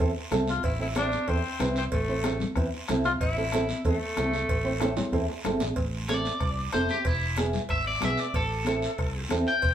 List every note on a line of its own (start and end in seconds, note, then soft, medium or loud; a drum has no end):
0.00 0.13 E2 loud
0.00 0.11 C4 medium
0.00 0.11 E4 medium
0.00 0.11 A4 medium
0.00 bombo low medium
0.00 cowbell medium
0.00 long guiro medium
0.15 high conga soft
0.31 0.58 C2 loud
0.31 0.48 C4 medium
0.31 0.49 E4 medium
0.31 0.49 A4 loud
0.31 bombo rim medium
0.31 cowbell medium
0.31 high conga medium
0.31 low conga medium
0.31 low timbale medium
0.31 short guiro medium
0.47 0.64 F4 medium
0.47 high conga medium
0.47 short guiro medium
0.63 1.15 A1 medium
0.63 0.79 E4 loud
0.63 bombo low medium
0.63 cowbell loud
0.63 long guiro medium
0.79 0.85 C4 medium
0.79 0.86 E4 medium
0.79 0.88 E4 medium
0.79 0.86 A4 medium
0.95 1.07 C4 medium
0.95 1.30 D4 loud
0.95 1.07 E4 medium
0.95 1.07 C5 medium
0.95 bombo rim medium
0.95 cowbell medium
0.95 high conga loud
0.95 short guiro medium
1.12 high conga medium
1.12 short guiro medium
1.28 1.41 E2 loud
1.28 1.39 C4 medium
1.28 1.77 C4 loud
1.28 1.39 E4 medium
1.28 1.40 A4 medium
1.28 bombo low medium
1.28 cowbell medium
1.28 long guiro medium
1.44 high conga soft
1.60 1.86 C2 loud
1.60 1.77 C4 medium
1.60 1.77 E4 medium
1.60 1.77 B4 medium
1.60 bombo rim medium
1.60 cowbell medium
1.60 high conga medium
1.60 low timbale medium
1.60 short guiro medium
1.76 1.85 C4 medium
1.76 short guiro medium
1.92 2.44 A1 loud
1.92 2.53 A3 medium
1.92 bombo low medium
1.92 cowbell loud
1.92 high conga soft
1.92 long guiro medium
2.08 2.14 C4 medium
2.08 2.14 E4 medium
2.08 2.14 C5 medium
2.24 2.36 C4 medium
2.24 2.36 E4 medium
2.24 2.36 A4 medium
2.24 bombo rim medium
2.24 cowbell medium
2.24 high conga loud
2.24 short guiro medium
2.40 high conga medium
2.40 low conga medium
2.40 short guiro medium
2.55 2.69 E2 loud
2.55 2.68 C4 medium
2.55 2.68 E4 medium
2.55 2.68 B4 medium
2.55 bombo low medium
2.55 bombo rim medium
2.55 cowbell medium
2.55 long guiro medium
2.73 high conga soft
2.88 3.15 C2 loud
2.88 3.06 C4 medium
2.88 3.06 E4 medium
2.88 3.06 A4 medium
2.88 bombo rim loud
2.88 cowbell medium
2.88 high conga medium
2.88 low conga medium
2.88 short guiro medium
3.04 3.12 F4 loud
3.04 high conga medium
3.04 short guiro medium
3.20 3.72 A1 medium
3.20 3.81 E4 loud
3.20 bombo low medium
3.20 cowbell loud
3.20 long guiro medium
3.37 3.42 C4 medium
3.37 3.43 E4 medium
3.37 3.43 A4 medium
3.52 3.64 C4 medium
3.52 3.65 E4 medium
3.52 3.65 A4 medium
3.52 bombo rim medium
3.52 cowbell medium
3.52 high conga loud
3.52 short guiro medium
3.69 high conga medium
3.69 short guiro medium
3.84 3.98 E2 loud
3.84 5.43 A3 medium
3.84 3.96 C4 medium
3.84 3.96 E4 medium
3.84 3.96 A4 medium
3.84 bombo low medium
3.84 cowbell medium
3.84 long guiro medium
4.02 high conga soft
4.17 4.43 C2 medium
4.17 4.34 C4 medium
4.17 4.34 E4 medium
4.17 4.34 A4 medium
4.17 bombo rim medium
4.17 cowbell medium
4.17 high conga medium
4.17 low timbale medium
4.17 short guiro medium
4.33 high conga medium
4.33 short guiro medium
4.49 5.00 A1 medium
4.49 bombo low medium
4.49 cowbell medium
4.49 long guiro medium
4.64 4.70 C4 medium
4.64 4.71 E4 medium
4.64 4.71 C5 medium
4.80 4.92 C4 loud
4.80 4.92 E4 medium
4.80 4.92 A4 loud
4.80 bombo rim medium
4.80 cowbell medium
4.80 high conga loud
4.80 high timbale medium
4.80 short guiro medium
4.97 high conga medium
4.97 low conga medium
4.97 high timbale medium
4.97 short guiro medium
5.12 5.26 E2 loud
5.12 5.24 C4 medium
5.12 5.24 E4 medium
5.12 5.24 A4 medium
5.12 bombo low medium
5.12 cowbell medium
5.12 long guiro medium
5.29 high conga soft
5.29 low timbale medium
5.45 5.60 G1 medium
5.45 5.62 C4 medium
5.45 5.62 E4 medium
5.45 5.62 A4 medium
5.45 bombo rim medium
5.45 cowbell medium
5.45 high conga medium
5.45 low conga medium
5.45 low timbale medium
5.45 short guiro medium
5.60 5.76 A1 medium
5.60 high conga medium
5.60 low timbale medium
5.60 short guiro medium
5.76 6.28 A1 loud
5.76 bombo low medium
5.76 cowbell medium
5.76 high conga soft
5.76 long guiro medium
6.08 6.32 C4 medium
6.08 6.32 E4 medium
6.08 6.32 A4 medium
6.08 6.72 D5 medium
6.08 bombo rim medium
6.08 cowbell medium
6.08 high conga medium
6.08 short guiro medium
6.25 high conga medium
6.25 short guiro medium
6.40 6.67 C2 medium
6.40 bombo low medium
6.40 bombo rim medium
6.40 cowbell medium
6.40 long guiro medium
6.58 high conga soft
6.72 6.87 F1 medium
6.72 6.96 C4 medium
6.72 6.96 E4 medium
6.72 6.96 A4 medium
6.72 6.89 C5 medium
6.72 bombo rim medium
6.72 cowbell medium
6.72 high conga medium
6.72 short guiro medium
6.89 7.07 G4 medium
6.89 high conga medium
6.89 short guiro medium
7.05 7.57 E1 loud
7.05 7.37 E4 medium
7.05 bombo low medium
7.05 cowbell medium
7.05 high conga soft
7.05 long guiro medium
7.37 7.60 B3 medium
7.37 7.61 E4 medium
7.37 7.61 G#4 medium
7.37 bombo rim medium
7.37 cowbell medium
7.37 high conga medium
7.37 short guiro medium
7.53 low conga medium
7.53 short guiro medium
7.69 7.96 G#1 medium
7.69 7.86 E5 medium
7.69 bombo low medium
7.69 bombo rim medium
7.69 cowbell medium
7.69 long guiro medium
7.85 8.02 D5 medium
7.85 high conga soft
8.01 8.15 B1 medium
8.01 8.25 B3 medium
8.01 8.25 E4 medium
8.01 8.25 G#4 medium
8.01 8.20 E5 medium
8.01 bombo rim medium
8.01 cowbell medium
8.01 high conga medium
8.01 low conga medium
8.01 short guiro medium
8.17 8.35 D5 medium
8.17 short guiro medium
8.34 8.85 A1 loud
8.34 9.29 A4 medium
8.34 bombo low medium
8.34 cowbell medium
8.34 high conga soft
8.34 long guiro medium
8.65 8.89 C4 medium
8.65 8.89 E4 medium
8.65 8.89 A4 medium
8.65 bombo rim medium
8.65 cowbell medium
8.65 high conga medium
8.65 short guiro medium
8.82 short guiro medium
8.98 9.24 C2 medium
8.98 bombo low medium
8.98 bombo rim medium
8.98 cowbell medium
8.98 long guiro medium
9.14 high conga soft
9.29 9.44 E2 medium
9.29 9.53 C4 medium
9.29 9.53 E4 medium
9.29 9.54 A4 medium
9.29 bombo rim medium
9.29 cowbell medium
9.29 high conga medium
9.29 low timbale medium
9.29 short guiro medium
9.47 9.74 G5 loud
9.47 short guiro medium
9.62 9.74 E1 loud
9.62 bombo low medium
9.62 cowbell medium
9.62 high conga soft
9.62 long guiro medium